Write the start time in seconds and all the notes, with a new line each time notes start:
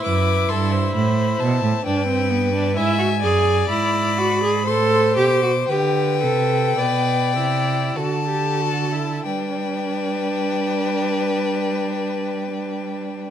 Already playing: E4
0.04 F#2 B4 D6
0.49 G2 A4 C6
0.71 C5
0.95 A2 B5
1.39 B2 A5
1.63 A2
1.85 G2 D4 B4 G5
2.08 C4
2.31 B3
2.53 D4
2.76 G#2 E4 E5 G#5
2.99 F#4
3.22 F#2 G#4 D5
3.69 G#2 E4 B5
4.18 F#4
4.43 G#4
4.66 A2 A4 C5 C6
5.16 B2 G4 D6
5.43 F#4
5.68 D3 G4 B4 G5
6.23 C3 A4
6.78 B2 B4 D5
7.36 C3 E4
7.96 D3 F#4 A4 A5
8.28 G4
8.61 F#4
8.93 E4
9.25 G3 D4 B4 G5